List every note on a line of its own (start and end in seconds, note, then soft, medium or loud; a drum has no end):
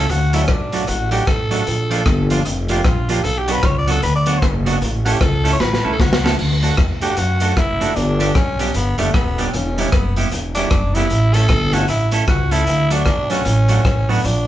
0.00 0.12 A4 loud
0.09 0.43 D2 loud
0.09 0.35 F#4 loud
0.09 closed hi-hat medium
0.33 0.44 F#3 medium
0.33 0.45 A3 medium
0.33 0.44 D4 loud
0.33 0.45 E4 loud
0.33 0.45 F#4 medium
0.33 closed hi-hat loud
0.43 0.51 C#4 medium
0.48 0.82 B1 loud
0.48 0.90 D4 medium
0.48 kick loud
0.48 cross-stick loud
0.48 closed hi-hat medium
0.72 0.84 F#3 medium
0.72 0.84 A3 medium
0.72 0.84 D4 medium
0.72 0.84 F#4 medium
0.72 closed hi-hat loud
0.87 1.22 A1 loud
0.87 1.11 F#4 medium
0.87 muted clean electric guitar stroke soft
0.87 closed hi-hat medium
1.11 1.22 F#3 medium
1.11 1.23 A3 medium
1.11 1.23 D4 medium
1.11 1.23 F#4 medium
1.11 1.29 G4 loud
1.11 closed hi-hat medium
1.27 1.61 A1 medium
1.27 2.30 A4 medium
1.27 kick loud
1.27 cross-stick loud
1.27 closed hi-hat medium
1.51 1.62 F#3 loud
1.51 1.62 A3 loud
1.51 1.62 D4 loud
1.51 1.62 F#4 medium
1.51 closed hi-hat loud
1.67 2.00 A#1 loud
1.67 closed hi-hat medium
1.90 2.01 F3 medium
1.90 2.02 A#3 medium
1.90 2.02 D4 medium
1.90 2.02 F4 medium
1.90 closed hi-hat loud
2.06 2.39 G1 loud
2.06 kick loud
2.06 cross-stick loud
2.06 closed hi-hat medium
2.30 2.41 F3 medium
2.30 2.41 A#3 medium
2.30 2.41 D4 medium
2.30 2.42 F4 medium
2.30 closed hi-hat loud
2.45 2.79 F1 loud
2.45 muted clean electric guitar stroke soft
2.45 closed hi-hat medium
2.68 2.80 F3 medium
2.68 2.81 A#3 medium
2.68 2.81 D4 medium
2.68 2.81 F4 loud
2.68 2.86 G4 medium
2.68 closed hi-hat medium
2.84 3.18 A#1 medium
2.84 3.12 F4 medium
2.84 kick loud
2.84 cross-stick loud
2.84 closed hi-hat medium
3.09 3.20 F3 medium
3.09 3.20 A#3 loud
3.09 3.20 D4 loud
3.09 3.20 F4 loud
3.09 3.25 G4 medium
3.09 closed hi-hat loud
3.24 3.58 B1 loud
3.24 3.40 A4 loud
3.24 closed hi-hat medium
3.39 3.53 G4 loud
3.48 3.59 F#3 medium
3.48 3.59 B3 medium
3.48 3.59 D4 loud
3.48 3.59 F#4 medium
3.48 closed hi-hat loud
3.52 3.67 B4 loud
3.63 3.97 C#2 loud
3.63 3.78 C#5 loud
3.63 kick loud
3.63 cross-stick loud
3.63 closed hi-hat medium
3.78 3.93 D5 loud
3.87 3.98 F#3 medium
3.87 3.98 B3 medium
3.87 3.99 D4 medium
3.87 3.99 F#4 medium
3.87 closed hi-hat loud
3.91 4.02 A4 loud
4.03 4.36 D2 loud
4.03 4.15 B4 loud
4.03 muted clean electric guitar stroke soft
4.03 closed hi-hat medium
4.16 4.52 D5 loud
4.26 4.37 F#3 medium
4.26 4.38 B3 medium
4.26 4.38 D4 loud
4.26 4.38 F#4 loud
4.26 closed hi-hat medium
4.42 4.76 F#1 loud
4.42 kick loud
4.42 cross-stick loud
4.42 closed hi-hat medium
4.66 4.77 F#3 medium
4.66 4.77 B3 loud
4.66 4.77 D4 loud
4.66 4.77 F#4 loud
4.66 closed hi-hat loud
4.81 5.15 A1 loud
4.81 closed hi-hat medium
5.05 5.16 A3 medium
5.05 5.16 C#4 loud
5.05 5.17 E4 loud
5.05 5.14 F#4 loud
5.05 5.17 A4 loud
5.05 closed hi-hat loud
5.12 5.23 G4 medium
5.21 5.54 C#2 loud
5.21 5.52 A4 medium
5.21 kick loud
5.21 cross-stick loud
5.21 closed hi-hat medium
5.44 5.55 A3 medium
5.44 5.55 C#4 medium
5.44 5.56 E4 loud
5.44 5.56 A4 medium
5.44 closed hi-hat loud
5.53 5.62 C#5 loud
5.60 5.80 A1 loud
5.60 5.95 B4 loud
5.60 muted clean electric guitar stroke soft
5.60 snare medium
5.73 snare medium
5.84 5.97 B1 medium
5.84 5.95 A3 medium
5.84 5.95 C#4 medium
5.84 5.95 E4 medium
5.84 5.95 A4 loud
5.93 6.02 A4 medium
6.00 6.33 C#2 medium
6.00 6.39 F#4 medium
6.00 kick loud
6.00 snare medium
6.13 snare loud
6.24 6.34 A3 medium
6.24 6.34 C#4 medium
6.24 6.35 E4 medium
6.24 6.35 A4 loud
6.24 snare loud
6.39 6.72 D2 loud
6.39 crash loud
6.62 6.73 A3 medium
6.62 6.74 D4 medium
6.62 6.74 F#4 medium
6.62 6.74 A4 medium
6.62 closed hi-hat loud
6.77 7.11 E2 loud
6.77 kick loud
6.77 cross-stick loud
6.77 closed hi-hat medium
7.02 7.13 A3 medium
7.02 7.13 D4 medium
7.02 7.13 F#4 medium
7.02 7.19 G4 loud
7.02 7.13 A4 medium
7.02 closed hi-hat loud
7.17 7.51 F#2 loud
7.17 7.59 F#4 loud
7.17 muted clean electric guitar stroke soft
7.17 closed hi-hat medium
7.40 7.52 A3 medium
7.40 7.52 D4 medium
7.40 7.53 F#4 medium
7.40 7.53 A4 loud
7.40 closed hi-hat medium
7.56 7.90 F#1 medium
7.56 7.97 E4 loud
7.56 kick loud
7.56 cross-stick loud
7.56 closed hi-hat medium
7.81 7.91 A3 loud
7.81 7.92 D4 medium
7.81 7.92 F#4 loud
7.81 7.92 A4 loud
7.81 closed hi-hat loud
7.95 8.30 G1 loud
7.95 8.37 D4 loud
7.95 closed hi-hat medium
8.19 8.30 G3 medium
8.19 8.31 B3 medium
8.19 8.31 D4 loud
8.19 8.31 G4 loud
8.19 closed hi-hat loud
8.35 8.69 B1 loud
8.35 8.75 C#4 medium
8.35 kick loud
8.35 cross-stick loud
8.35 closed hi-hat medium
8.59 8.70 G3 medium
8.59 8.70 B3 medium
8.59 8.70 D4 medium
8.59 8.71 G4 medium
8.59 closed hi-hat loud
8.74 8.95 G1 loud
8.74 8.98 B3 medium
8.74 muted clean electric guitar stroke medium
8.74 closed hi-hat medium
8.98 9.12 F#1 medium
8.98 9.09 G3 medium
8.98 9.16 A3 medium
8.98 9.09 B3 medium
8.98 9.09 D4 loud
8.98 9.09 G4 loud
8.98 closed hi-hat medium
9.14 9.47 D#1 medium
9.14 9.49 B3 medium
9.14 kick loud
9.14 cross-stick loud
9.14 closed hi-hat medium
9.38 9.49 G3 medium
9.38 9.49 B3 medium
9.38 9.49 D4 medium
9.38 9.49 G4 medium
9.38 closed hi-hat loud
9.48 9.55 C4 medium
9.53 9.87 E1 loud
9.53 9.96 C#4 medium
9.53 closed hi-hat medium
9.78 9.88 G3 medium
9.78 9.89 B3 medium
9.78 9.89 E4 loud
9.78 9.89 G4 medium
9.78 closed hi-hat loud
9.92 10.26 F#1 loud
9.92 10.17 B3 medium
9.92 kick loud
9.92 cross-stick loud
9.92 closed hi-hat medium
10.16 10.28 G3 medium
10.16 10.27 B3 medium
10.16 10.28 E4 medium
10.16 10.28 G4 medium
10.16 closed hi-hat loud
10.31 10.65 E1 loud
10.31 muted clean electric guitar stroke soft
10.31 closed hi-hat medium
10.55 10.67 G3 medium
10.55 10.67 B3 medium
10.55 10.96 D4 loud
10.55 10.67 E4 loud
10.55 10.67 G4 loud
10.55 closed hi-hat medium
10.70 11.04 F#1 loud
10.70 kick loud
10.70 cross-stick loud
10.70 closed hi-hat medium
10.94 11.06 G3 loud
10.94 11.06 B3 loud
10.94 11.36 E4 loud
10.94 11.06 E4 loud
10.94 11.06 G4 loud
10.94 closed hi-hat loud
11.10 11.44 A1 loud
11.10 closed hi-hat medium
11.34 11.45 A3 medium
11.34 11.45 C#4 medium
11.34 11.46 E4 loud
11.34 11.75 A4 loud
11.34 11.46 A4 loud
11.34 closed hi-hat loud
11.49 11.83 G1 loud
11.49 kick loud
11.49 cross-stick loud
11.49 closed hi-hat medium
11.73 11.84 A3 medium
11.73 11.84 C#4 medium
11.73 11.85 E4 medium
11.73 11.89 F#4 loud
11.73 11.85 A4 medium
11.73 closed hi-hat loud
11.88 12.22 A1 medium
11.88 12.11 E4 medium
11.88 muted clean electric guitar stroke soft
11.88 closed hi-hat medium
12.11 12.23 A3 medium
12.11 12.23 C#4 medium
12.11 12.24 E4 loud
12.11 12.24 A4 loud
12.11 closed hi-hat medium
12.27 12.61 C#2 medium
12.27 12.53 F#4 medium
12.27 kick loud
12.27 cross-stick loud
12.27 closed hi-hat medium
12.51 12.62 A3 medium
12.51 12.63 C#4 medium
12.51 12.93 E4 loud
12.51 12.63 E4 medium
12.51 12.63 A4 loud
12.51 closed hi-hat loud
12.67 13.00 D2 loud
12.67 closed hi-hat medium
12.90 13.02 F#3 medium
12.90 13.02 A3 loud
12.90 13.02 D4 loud
12.90 13.32 D4 loud
12.90 13.02 F#4 loud
12.90 closed hi-hat loud
13.06 13.40 B1 loud
13.06 kick loud
13.06 cross-stick loud
13.06 closed hi-hat medium
13.30 13.41 F#3 medium
13.30 13.41 A3 medium
13.30 14.12 C#4 loud
13.30 13.41 D4 medium
13.30 13.41 F#4 medium
13.30 closed hi-hat loud
13.45 13.79 A1 loud
13.45 muted clean electric guitar stroke soft
13.45 closed hi-hat medium
13.68 13.80 F#3 medium
13.68 13.80 A3 loud
13.68 13.80 D4 medium
13.68 13.80 F#4 loud
13.68 closed hi-hat medium
13.85 14.18 A1 loud
13.85 kick loud
13.85 cross-stick loud
13.85 closed hi-hat medium
14.09 14.20 F#3 loud
14.09 14.20 A3 medium
14.09 14.27 B3 medium
14.09 14.20 D4 loud
14.09 14.20 F#4 loud
14.09 open hi-hat medium
14.24 14.47 A#1 loud
14.24 14.47 D4 loud
14.24 closed hi-hat medium